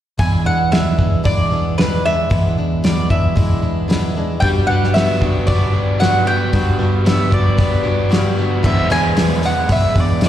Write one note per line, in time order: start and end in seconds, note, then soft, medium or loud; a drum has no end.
0.18 0.44 E2 medium
0.18 2.27 E2 medium
0.18 0.45 E3 medium
0.18 0.45 G#3 medium
0.18 0.44 B3 medium
0.18 0.45 D4 medium
0.18 0.43 E4 medium
0.18 0.43 G#5 medium
0.18 kick medium
0.18 open hi-hat soft
0.44 0.70 G#3 soft
0.44 0.72 B3 soft
0.44 0.71 D4 soft
0.44 0.71 E4 soft
0.44 0.70 F#5 medium
0.71 0.98 G#3 soft
0.71 0.97 B3 soft
0.71 0.98 D4 medium
0.71 0.96 E4 medium
0.71 1.21 E5 medium
0.71 snare medium
0.71 open hi-hat soft
0.98 1.23 G#3 soft
0.98 1.24 B3 soft
0.98 1.23 D4 soft
0.98 1.24 E4 soft
0.98 kick medium
1.23 1.50 E2 medium
1.23 1.51 E3 medium
1.23 1.50 G#3 medium
1.23 1.51 B3 medium
1.23 1.51 D4 medium
1.23 1.50 E4 medium
1.23 1.74 D5 medium
1.23 kick medium
1.23 open hi-hat soft
1.51 1.77 G#3 soft
1.51 1.78 B3 soft
1.51 1.78 D4 soft
1.51 1.77 E4 soft
1.78 2.04 G#3 soft
1.78 2.04 B3 medium
1.78 2.04 D4 medium
1.78 2.02 E4 medium
1.78 2.05 B4 medium
1.78 snare medium
1.78 open hi-hat soft
2.04 2.29 G#3 soft
2.04 2.29 B3 soft
2.04 2.29 D4 soft
2.04 2.29 E4 soft
2.04 2.84 E5 medium
2.30 2.56 E2 medium
2.30 4.38 E2 medium
2.30 2.56 E3 medium
2.30 2.56 G#3 medium
2.30 2.57 B3 medium
2.30 2.57 D4 medium
2.30 2.56 E4 medium
2.30 kick medium
2.30 open hi-hat soft
2.58 2.81 G#3 soft
2.58 2.84 B3 soft
2.58 2.82 D4 soft
2.58 2.83 E4 soft
2.83 3.09 G#3 soft
2.83 3.09 B3 medium
2.83 3.10 D4 soft
2.83 3.08 E4 medium
2.83 3.10 D5 medium
2.83 snare loud
2.83 open hi-hat soft
3.09 3.34 G#3 soft
3.09 3.35 B3 soft
3.09 3.34 D4 soft
3.09 3.36 E4 soft
3.09 4.12 E5 medium
3.09 kick medium
3.35 3.62 E2 medium
3.35 3.62 E3 medium
3.35 3.62 G#3 medium
3.35 3.61 B3 medium
3.35 3.62 D4 medium
3.35 3.60 E4 medium
3.35 kick medium
3.35 open hi-hat soft
3.62 3.87 G#3 soft
3.62 3.88 B3 soft
3.62 3.87 D4 soft
3.62 3.88 E4 soft
3.88 4.15 G#3 medium
3.88 4.15 B3 medium
3.88 4.15 D4 medium
3.88 4.14 E4 medium
3.88 snare medium
3.88 open hi-hat soft
4.15 4.42 G#3 soft
4.15 4.42 B3 soft
4.15 4.42 D4 soft
4.15 4.42 E4 medium
4.40 6.49 G2 medium
4.40 4.68 G3 medium
4.40 4.69 D4 medium
4.40 4.68 F#4 medium
4.40 4.68 B4 medium
4.40 4.47 G5 medium
4.40 kick medium
4.40 open hi-hat soft
4.67 5.98 G3 medium
4.67 4.94 D4 soft
4.67 4.94 F#4 soft
4.67 4.95 B4 soft
4.67 4.95 F#5 medium
4.84 snare soft
4.94 5.20 G3 soft
4.94 5.47 B3 medium
4.94 5.21 D4 medium
4.94 5.20 F#4 medium
4.94 5.20 B4 medium
4.94 5.43 E5 medium
4.94 snare loud
4.94 open hi-hat soft
5.21 5.47 D4 soft
5.21 5.47 F#4 soft
5.21 5.47 B4 soft
5.21 kick medium
5.47 5.73 G3 medium
5.47 6.25 B3 medium
5.47 5.73 D4 medium
5.47 5.72 F#4 medium
5.47 5.71 B4 medium
5.47 5.96 D5 medium
5.47 kick medium
5.47 open hi-hat soft
5.72 5.98 D4 soft
5.72 5.99 F#4 soft
5.72 5.99 B4 soft
5.99 6.26 G3 soft
5.99 6.26 D4 medium
5.99 6.26 F#4 medium
5.99 6.24 B4 medium
5.99 6.24 F#5 medium
5.99 snare medium
5.99 open hi-hat soft
6.26 7.04 B3 medium
6.26 6.52 D4 soft
6.26 6.53 F#4 soft
6.26 6.52 B4 soft
6.26 7.06 G5 medium
6.53 8.60 G2 medium
6.53 6.79 G3 medium
6.53 6.79 D4 medium
6.53 6.79 F#4 medium
6.53 6.78 B4 medium
6.53 kick medium
6.53 open hi-hat soft
6.79 8.09 G3 medium
6.79 7.05 D4 soft
6.79 7.05 F#4 soft
6.79 7.05 B4 soft
7.05 7.32 G3 soft
7.05 7.55 B3 medium
7.05 7.31 D4 medium
7.05 7.30 F#4 soft
7.05 7.29 B4 medium
7.05 7.33 E5 medium
7.05 snare loud
7.05 open hi-hat soft
7.31 7.57 D4 soft
7.31 7.57 F#4 soft
7.31 7.57 B4 soft
7.31 8.34 D5 medium
7.31 kick medium
7.56 7.84 G3 medium
7.56 8.36 B3 medium
7.56 7.84 D4 medium
7.56 7.83 F#4 medium
7.56 7.82 B4 medium
7.56 kick loud
7.56 open hi-hat soft
7.83 8.09 D4 soft
7.83 8.10 F#4 soft
7.83 8.10 B4 soft
8.09 8.36 G3 medium
8.09 8.37 D4 medium
8.09 8.36 F#4 medium
8.09 8.35 B4 medium
8.09 snare medium
8.09 open hi-hat soft
8.36 8.64 B3 medium
8.36 8.63 D4 soft
8.36 8.64 F#4 soft
8.36 8.63 B4 soft
8.63 8.90 E2 medium
8.63 8.84 E2 medium
8.63 8.90 E3 medium
8.63 8.90 G#3 medium
8.63 8.89 B3 medium
8.63 8.90 D4 medium
8.63 8.88 B4 medium
8.63 8.91 E5 medium
8.63 kick medium
8.63 crash medium
8.89 9.51 E2 medium
8.89 9.14 G#3 soft
8.89 9.16 B3 soft
8.89 9.15 D4 soft
8.89 9.16 B4 soft
8.89 9.40 G#5 medium
8.89 open hi-hat soft
9.15 9.42 G#3 medium
9.15 9.41 B3 medium
9.15 9.42 D4 medium
9.15 9.41 B4 medium
9.15 snare loud
9.15 open hi-hat medium
9.42 9.68 G#3 soft
9.42 9.68 B3 soft
9.42 9.68 D4 soft
9.42 9.68 B4 soft
9.42 9.69 F#5 medium
9.42 open hi-hat soft
9.68 9.80 B1 medium
9.68 9.95 E2 medium
9.68 9.95 E3 medium
9.68 9.95 G#3 medium
9.68 9.94 B3 medium
9.68 9.95 D4 medium
9.68 9.93 B4 medium
9.68 kick loud
9.68 open hi-hat medium
9.72 9.95 E5 medium
9.95 10.29 E2 medium
9.95 10.20 G#3 soft
9.95 10.21 B3 soft
9.95 10.21 D4 soft
9.95 10.21 B4 soft
9.95 kick medium
9.95 open hi-hat soft
10.00 10.22 D5 medium
10.21 10.29 G#3 soft
10.21 10.29 B3 medium
10.21 10.29 D4 medium
10.21 10.29 B4 medium
10.21 snare medium
10.21 open hi-hat medium
10.26 10.29 D5 medium